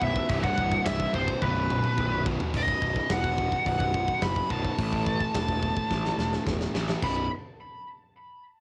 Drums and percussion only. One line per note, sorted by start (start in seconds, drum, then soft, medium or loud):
0.02 kick medium
0.16 kick medium
0.29 kick medium
0.29 crash medium
0.44 kick medium
0.58 kick medium
0.72 kick medium
0.86 kick medium
0.86 snare loud
0.86 crash medium
1.00 kick loud
1.14 kick medium
1.28 kick medium
1.42 kick medium
1.42 high tom medium
1.70 mid tom medium
1.84 mid tom medium
1.98 kick loud
2.26 kick loud
2.40 floor tom medium
2.54 kick medium
2.54 open hi-hat medium
2.68 kick medium
2.82 kick medium
2.96 kick medium
3.09 kick medium
3.09 snare loud
3.09 open hi-hat medium
3.24 kick medium
3.38 kick medium
3.52 kick medium
3.66 kick medium
3.66 open hi-hat soft
3.80 kick medium
3.94 kick medium
4.08 kick medium
4.22 kick medium
4.22 snare loud
4.22 open hi-hat medium
4.36 kick medium
4.50 kick medium
4.65 kick medium
4.78 kick medium
4.78 open hi-hat medium
4.93 kick medium
5.06 kick medium
5.20 kick medium
5.35 kick medium
5.35 snare loud
5.35 open hi-hat medium
5.49 kick medium
5.63 kick medium
5.77 kick medium
5.91 kick medium
5.91 snare medium
6.05 snare medium
6.19 snare medium
6.33 snare medium
6.47 kick medium
6.47 snare medium
6.61 snare medium
6.75 snare medium
6.89 snare medium
7.02 kick loud
7.02 crash medium